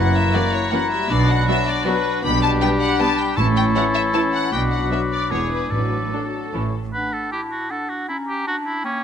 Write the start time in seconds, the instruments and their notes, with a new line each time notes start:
Already playing: double bass section F#1, cello section F#2, french horn section A#3 E4, clarinet E4, oboe F#4, violin section F#5, flute A#5
0.15 violin section E5
0.34 viola section E3 A#3, violin section C#4 F#4 D5
0.53 violin section C#5
0.72 viola section E3 A#3, french horn section A#3 E4, violin section C#4 F#4 F#5, clarinet E4, oboe F#4, flute A#5
0.91 french horn section G3, violin section E5
1.09 double bass section B1, cello section B2, french horn section F#3 D4, clarinet D4, oboe F#4, violin section D5, flute B5
1.30 violin section F#5
1.47 viola section F#3 B3, violin section D4 F#4 E5
1.67 violin section D5
1.85 french horn section F#3 D4, viola section F#3 B3, violin section D4 F#4 B4, clarinet D4, oboe F#4, flute B5
2.23 double bass section B1, cello section B2, french horn section G3 D4, clarinet D4, oboe G4, flute B5, violin section B5
2.42 violin section A5
2.61 viola section G3 B3, violin section D4 B4 G5
2.80 violin section F#5
2.99 viola section G3 B3, violin section D4 B4 A5
3.18 violin section G5
3.37 double bass section A1, timpani A2, cello section A2, french horn section E3 C#4, clarinet E4, oboe A4, violin section A5, flute C#6
3.56 violin section G5
3.75 viola section E3 E4, violin section E4 C#5 F#5
3.94 violin section E5
4.13 viola section E3 E4, violin section E4 C#5 A5
4.33 violin section F#5
4.52 double bass section B1, cello section B2, french horn section F#3 D4, clarinet F#4, oboe B4, violin section G5, flute D6
4.71 violin section F#5
4.91 viola section F#3 B3, violin section D4 B4 E5
5.12 violin section D5
5.31 double bass section E1, cello section E2, viola section E3 B3, french horn section G#3 D4, violin section D4 G#4 C#5, clarinet E4, oboe G#4
5.51 violin section B4
5.70 double bass section A1, timpani A2, cello section A2, french horn section F#3 D4, clarinet F#4, oboe A4, violin section B4
6.13 french horn section F#3 D4, viola section F#3 D4, violin section D4 A4
6.53 double bass section A1, cello section A2, viola section E3 C#4, french horn section E3 C#4, clarinet E4, violin section E4 A4, flute C#6
6.93 clarinet D4, oboe B4, flute F#5
7.13 oboe A4
7.32 clarinet E4, oboe G4, flute A5
7.51 oboe F#4
7.70 clarinet D4, oboe A4, flute F#5
7.89 oboe F#4
8.08 clarinet C#4, oboe E4, flute A#5
8.28 oboe G4
8.46 clarinet D4, oboe F#4, flute A5
8.66 oboe E4
8.84 clarinet A#3, oboe C#4, flute G5